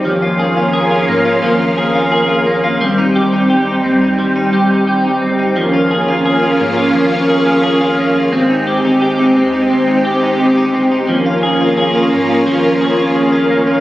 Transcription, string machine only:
X:1
M:4/4
L:1/8
Q:1/4=87
K:Dblyd
V:1 name="String machine"
[B,DF]8 | [G,CG]8 | [B,DF]8 | [A,CG]8 |
[B,DF]8 |]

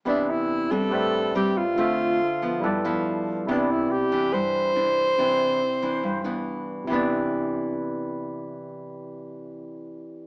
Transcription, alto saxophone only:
X:1
M:4/4
L:1/8
Q:1/4=140
K:C
V:1 name="Alto saxophone"
D E2 A3 G F- | F4- F z3 | D E G2 c4- | c6 z2 |
z8 | z8 |]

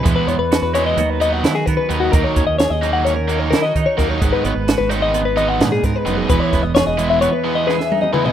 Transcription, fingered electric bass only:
X:1
M:9/8
L:1/16
Q:3/8=87
K:Elyd
V:1 name="Fingered electric bass" clef=bass
E,, z E,, E,,2 E,,3 D,,4 D,2 D, z D,,2 | D,, z D,, D,,2 D,,6- D,, D,2 D, z D,,2 | G,,, z G,,, G,,,2 G,,,6- G,,, G,,2 G,, z =F,,,2 | E,,, z E,,, E,,,2 E,,,4 z8 z |]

